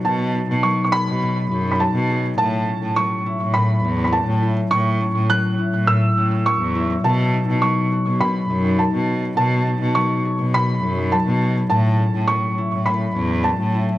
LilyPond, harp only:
\new Staff \with { instrumentName = "Harp" } { \time 4/4 \key b \mixolydian \tempo 4 = 103 <b, fis dis'>8 dis'8 fis8 gis'8 b,8 dis'8 fis8 gis'8 | a,8 cis'8 fis8 e'8 a,8 cis'8 fis8 e'8 | a,8 cis'8 fis8 e'8 a,8 cis'8 fis8 e'8 | b,8 dis'8 fis8 fis'16 gis'16 b,8 dis'8 fis4 |
b,8 dis'8 fis8 gis'8 b,8 dis'8 fis8 gis'8 | a,8 cis'8 fis8 e'8 a,8 cis'8 fis8 e'8 | }